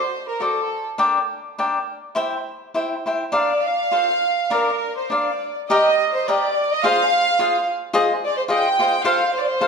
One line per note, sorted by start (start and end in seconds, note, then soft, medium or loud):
0.00 0.24 C5 medium
0.28 0.40 A#4 soft
0.40 0.59 F#4 soft
0.40 0.60 A4 soft
0.40 0.86 A4 soft
0.40 0.60 C5 soft
0.40 0.60 D5 soft
0.98 1.18 D4 medium
0.98 1.18 A#4 medium
0.98 1.19 D5 medium
0.98 1.18 G5 medium
1.58 1.78 D4 soft
1.58 1.78 A#4 soft
1.58 1.78 D5 soft
1.58 1.78 G5 soft
2.15 2.35 E4 medium
2.15 2.35 C5 medium
2.15 2.35 E5 medium
2.15 2.36 G5 medium
2.74 2.94 E4 soft
2.74 2.94 C5 soft
2.74 2.94 E5 soft
2.74 2.95 G5 medium
3.06 3.22 E4 soft
3.06 3.23 C5 soft
3.06 3.23 E5 soft
3.06 3.23 G5 soft
3.32 3.52 D4 medium
3.32 3.52 A#4 medium
3.32 3.52 D5 medium
3.32 3.64 D5 medium
3.32 3.52 F5 medium
3.66 4.51 F5 medium
3.91 4.11 F4 soft
3.91 4.12 A4 soft
3.91 4.12 C5 soft
3.91 4.12 F5 medium
4.50 4.70 D4 medium
4.50 4.70 A#4 medium
4.50 4.97 A#4 medium
4.50 4.70 D5 medium
4.50 4.70 F5 medium
4.97 5.10 C5 medium
5.10 5.30 D4 soft
5.10 5.30 A#4 soft
5.10 5.57 D5 soft
5.10 5.31 D5 soft
5.10 5.31 F5 soft
5.70 5.88 G4 medium
5.70 5.89 A#4 medium
5.70 6.11 D#5 medium
5.70 5.89 D#5 medium
5.70 5.89 G5 medium
6.15 6.27 C5 medium
6.28 6.46 G4 medium
6.28 6.46 A#4 medium
6.28 6.71 D5 medium
6.28 6.46 D#5 medium
6.28 6.47 G5 medium
6.72 6.84 D#5 medium
6.83 7.01 F4 medium
6.83 7.02 G#4 medium
6.83 7.02 C5 medium
6.83 7.02 F5 medium
6.83 7.69 F5 loud
7.39 7.57 F4 medium
7.39 7.57 G#4 medium
7.39 7.57 C5 medium
7.39 7.58 F5 medium
7.93 8.12 F4 medium
7.93 8.12 G#4 medium
7.93 8.12 C5 medium
7.93 8.12 D#5 medium
8.26 8.37 D5 medium
8.38 8.44 C5 medium
8.48 8.66 F4 medium
8.48 8.67 G#4 medium
8.48 8.67 C5 medium
8.48 8.67 D#5 medium
8.48 9.01 G5 medium
8.79 8.94 F4 medium
8.79 8.94 G#4 soft
8.79 8.95 C5 medium
8.79 8.95 D#5 soft
9.04 9.22 F4 medium
9.04 9.23 A4 medium
9.04 9.23 C5 medium
9.04 9.35 F5 medium
9.04 9.23 F5 medium
9.35 9.41 C5 medium
9.40 9.46 D5 medium
9.47 9.68 C5 medium
9.61 9.68 F4 medium
9.61 9.68 A4 medium
9.61 9.68 C5 medium
9.61 9.68 F5 medium